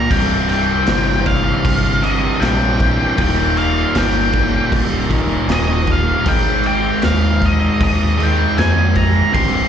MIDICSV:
0, 0, Header, 1, 5, 480
1, 0, Start_track
1, 0, Tempo, 769231
1, 69, Time_signature, 4, 2, 24, 8
1, 6043, End_track
2, 0, Start_track
2, 0, Title_t, "Lead electric guitar"
2, 0, Program_c, 0, 29
2, 0, Note_on_c, 0, 82, 100
2, 67, Note_on_c, 0, 79, 117
2, 75, Note_off_c, 0, 82, 0
2, 301, Note_off_c, 0, 79, 0
2, 308, Note_on_c, 0, 79, 99
2, 789, Note_off_c, 0, 79, 0
2, 791, Note_on_c, 0, 77, 98
2, 1269, Note_on_c, 0, 75, 96
2, 1285, Note_off_c, 0, 77, 0
2, 1498, Note_on_c, 0, 79, 97
2, 1517, Note_off_c, 0, 75, 0
2, 1999, Note_off_c, 0, 79, 0
2, 2007, Note_on_c, 0, 79, 106
2, 2232, Note_off_c, 0, 79, 0
2, 2235, Note_on_c, 0, 77, 93
2, 2480, Note_off_c, 0, 77, 0
2, 2484, Note_on_c, 0, 79, 81
2, 2933, Note_off_c, 0, 79, 0
2, 3444, Note_on_c, 0, 75, 80
2, 3684, Note_off_c, 0, 75, 0
2, 3693, Note_on_c, 0, 77, 85
2, 3920, Note_off_c, 0, 77, 0
2, 3923, Note_on_c, 0, 79, 105
2, 4155, Note_off_c, 0, 79, 0
2, 4163, Note_on_c, 0, 79, 94
2, 4380, Note_off_c, 0, 79, 0
2, 4398, Note_on_c, 0, 77, 93
2, 4642, Note_off_c, 0, 77, 0
2, 4653, Note_on_c, 0, 75, 94
2, 4883, Note_off_c, 0, 75, 0
2, 4891, Note_on_c, 0, 75, 90
2, 5128, Note_off_c, 0, 75, 0
2, 5137, Note_on_c, 0, 79, 105
2, 5353, Note_off_c, 0, 79, 0
2, 5356, Note_on_c, 0, 80, 104
2, 5595, Note_on_c, 0, 82, 97
2, 5600, Note_off_c, 0, 80, 0
2, 5826, Note_off_c, 0, 82, 0
2, 5828, Note_on_c, 0, 84, 108
2, 6043, Note_off_c, 0, 84, 0
2, 6043, End_track
3, 0, Start_track
3, 0, Title_t, "Distorted electric guitar"
3, 0, Program_c, 1, 30
3, 61, Note_on_c, 1, 36, 102
3, 74, Note_on_c, 1, 43, 105
3, 85, Note_on_c, 1, 48, 112
3, 1249, Note_off_c, 1, 48, 0
3, 1252, Note_off_c, 1, 36, 0
3, 1257, Note_on_c, 1, 48, 82
3, 1258, Note_off_c, 1, 43, 0
3, 1267, Note_on_c, 1, 43, 78
3, 1279, Note_on_c, 1, 36, 74
3, 1485, Note_off_c, 1, 36, 0
3, 1489, Note_off_c, 1, 48, 0
3, 1493, Note_on_c, 1, 36, 83
3, 1495, Note_off_c, 1, 43, 0
3, 1506, Note_on_c, 1, 43, 85
3, 1516, Note_on_c, 1, 48, 92
3, 1968, Note_off_c, 1, 36, 0
3, 1974, Note_off_c, 1, 43, 0
3, 1979, Note_off_c, 1, 48, 0
3, 1979, Note_on_c, 1, 39, 97
3, 1991, Note_on_c, 1, 46, 98
3, 2001, Note_on_c, 1, 51, 105
3, 3167, Note_off_c, 1, 51, 0
3, 3171, Note_off_c, 1, 39, 0
3, 3175, Note_off_c, 1, 46, 0
3, 3175, Note_on_c, 1, 51, 93
3, 3183, Note_on_c, 1, 46, 87
3, 3197, Note_on_c, 1, 39, 65
3, 3402, Note_off_c, 1, 39, 0
3, 3408, Note_off_c, 1, 51, 0
3, 3409, Note_on_c, 1, 39, 82
3, 3413, Note_off_c, 1, 46, 0
3, 3422, Note_on_c, 1, 46, 94
3, 3430, Note_on_c, 1, 51, 94
3, 3886, Note_off_c, 1, 39, 0
3, 3892, Note_off_c, 1, 46, 0
3, 3896, Note_off_c, 1, 51, 0
3, 3896, Note_on_c, 1, 44, 103
3, 3907, Note_on_c, 1, 51, 108
3, 3919, Note_on_c, 1, 56, 100
3, 5089, Note_off_c, 1, 44, 0
3, 5092, Note_off_c, 1, 56, 0
3, 5095, Note_off_c, 1, 51, 0
3, 5100, Note_on_c, 1, 56, 81
3, 5110, Note_on_c, 1, 51, 82
3, 5122, Note_on_c, 1, 44, 74
3, 5331, Note_off_c, 1, 56, 0
3, 5336, Note_off_c, 1, 44, 0
3, 5336, Note_off_c, 1, 51, 0
3, 5344, Note_on_c, 1, 44, 85
3, 5350, Note_on_c, 1, 51, 93
3, 5361, Note_on_c, 1, 56, 85
3, 5813, Note_off_c, 1, 44, 0
3, 5816, Note_off_c, 1, 51, 0
3, 5816, Note_on_c, 1, 36, 98
3, 5821, Note_off_c, 1, 56, 0
3, 5825, Note_on_c, 1, 43, 108
3, 5837, Note_on_c, 1, 48, 102
3, 6043, Note_off_c, 1, 36, 0
3, 6043, Note_off_c, 1, 43, 0
3, 6043, Note_off_c, 1, 48, 0
3, 6043, End_track
4, 0, Start_track
4, 0, Title_t, "Fingered electric bass"
4, 0, Program_c, 2, 33
4, 67, Note_on_c, 2, 24, 95
4, 460, Note_off_c, 2, 24, 0
4, 542, Note_on_c, 2, 31, 92
4, 938, Note_off_c, 2, 31, 0
4, 1025, Note_on_c, 2, 31, 94
4, 1419, Note_off_c, 2, 31, 0
4, 1503, Note_on_c, 2, 34, 97
4, 1898, Note_off_c, 2, 34, 0
4, 1989, Note_on_c, 2, 27, 96
4, 2382, Note_off_c, 2, 27, 0
4, 2462, Note_on_c, 2, 31, 99
4, 2858, Note_off_c, 2, 31, 0
4, 2947, Note_on_c, 2, 24, 96
4, 3340, Note_off_c, 2, 24, 0
4, 3415, Note_on_c, 2, 27, 91
4, 3813, Note_off_c, 2, 27, 0
4, 3911, Note_on_c, 2, 32, 101
4, 4303, Note_off_c, 2, 32, 0
4, 4391, Note_on_c, 2, 39, 98
4, 4783, Note_off_c, 2, 39, 0
4, 4871, Note_on_c, 2, 39, 100
4, 5263, Note_off_c, 2, 39, 0
4, 5348, Note_on_c, 2, 41, 90
4, 5741, Note_off_c, 2, 41, 0
4, 5831, Note_on_c, 2, 24, 101
4, 6043, Note_off_c, 2, 24, 0
4, 6043, End_track
5, 0, Start_track
5, 0, Title_t, "Drums"
5, 67, Note_on_c, 9, 36, 127
5, 67, Note_on_c, 9, 49, 93
5, 129, Note_off_c, 9, 49, 0
5, 130, Note_off_c, 9, 36, 0
5, 305, Note_on_c, 9, 49, 67
5, 367, Note_off_c, 9, 49, 0
5, 540, Note_on_c, 9, 49, 91
5, 547, Note_on_c, 9, 38, 114
5, 603, Note_off_c, 9, 49, 0
5, 610, Note_off_c, 9, 38, 0
5, 785, Note_on_c, 9, 49, 60
5, 788, Note_on_c, 9, 36, 87
5, 847, Note_off_c, 9, 49, 0
5, 850, Note_off_c, 9, 36, 0
5, 1028, Note_on_c, 9, 36, 126
5, 1028, Note_on_c, 9, 49, 90
5, 1090, Note_off_c, 9, 49, 0
5, 1091, Note_off_c, 9, 36, 0
5, 1270, Note_on_c, 9, 49, 58
5, 1332, Note_off_c, 9, 49, 0
5, 1510, Note_on_c, 9, 49, 79
5, 1517, Note_on_c, 9, 38, 106
5, 1572, Note_off_c, 9, 49, 0
5, 1579, Note_off_c, 9, 38, 0
5, 1745, Note_on_c, 9, 49, 63
5, 1749, Note_on_c, 9, 36, 94
5, 1807, Note_off_c, 9, 49, 0
5, 1811, Note_off_c, 9, 36, 0
5, 1982, Note_on_c, 9, 49, 92
5, 1987, Note_on_c, 9, 36, 127
5, 2045, Note_off_c, 9, 49, 0
5, 2049, Note_off_c, 9, 36, 0
5, 2228, Note_on_c, 9, 49, 63
5, 2290, Note_off_c, 9, 49, 0
5, 2464, Note_on_c, 9, 49, 90
5, 2471, Note_on_c, 9, 38, 127
5, 2526, Note_off_c, 9, 49, 0
5, 2533, Note_off_c, 9, 38, 0
5, 2702, Note_on_c, 9, 49, 65
5, 2706, Note_on_c, 9, 36, 90
5, 2765, Note_off_c, 9, 49, 0
5, 2769, Note_off_c, 9, 36, 0
5, 2946, Note_on_c, 9, 36, 124
5, 2947, Note_on_c, 9, 49, 97
5, 3008, Note_off_c, 9, 36, 0
5, 3009, Note_off_c, 9, 49, 0
5, 3186, Note_on_c, 9, 36, 82
5, 3187, Note_on_c, 9, 49, 66
5, 3249, Note_off_c, 9, 36, 0
5, 3249, Note_off_c, 9, 49, 0
5, 3425, Note_on_c, 9, 49, 81
5, 3431, Note_on_c, 9, 38, 105
5, 3487, Note_off_c, 9, 49, 0
5, 3494, Note_off_c, 9, 38, 0
5, 3663, Note_on_c, 9, 49, 66
5, 3667, Note_on_c, 9, 36, 94
5, 3726, Note_off_c, 9, 49, 0
5, 3729, Note_off_c, 9, 36, 0
5, 3904, Note_on_c, 9, 49, 98
5, 3907, Note_on_c, 9, 36, 127
5, 3966, Note_off_c, 9, 49, 0
5, 3969, Note_off_c, 9, 36, 0
5, 4140, Note_on_c, 9, 49, 66
5, 4202, Note_off_c, 9, 49, 0
5, 4381, Note_on_c, 9, 49, 92
5, 4388, Note_on_c, 9, 38, 121
5, 4443, Note_off_c, 9, 49, 0
5, 4450, Note_off_c, 9, 38, 0
5, 4627, Note_on_c, 9, 49, 64
5, 4629, Note_on_c, 9, 36, 92
5, 4689, Note_off_c, 9, 49, 0
5, 4691, Note_off_c, 9, 36, 0
5, 4871, Note_on_c, 9, 36, 126
5, 4872, Note_on_c, 9, 49, 85
5, 4934, Note_off_c, 9, 36, 0
5, 4935, Note_off_c, 9, 49, 0
5, 5117, Note_on_c, 9, 49, 59
5, 5180, Note_off_c, 9, 49, 0
5, 5354, Note_on_c, 9, 49, 75
5, 5361, Note_on_c, 9, 38, 114
5, 5416, Note_off_c, 9, 49, 0
5, 5423, Note_off_c, 9, 38, 0
5, 5587, Note_on_c, 9, 49, 59
5, 5591, Note_on_c, 9, 36, 91
5, 5649, Note_off_c, 9, 49, 0
5, 5653, Note_off_c, 9, 36, 0
5, 5830, Note_on_c, 9, 49, 94
5, 5832, Note_on_c, 9, 36, 127
5, 5893, Note_off_c, 9, 49, 0
5, 5894, Note_off_c, 9, 36, 0
5, 6043, End_track
0, 0, End_of_file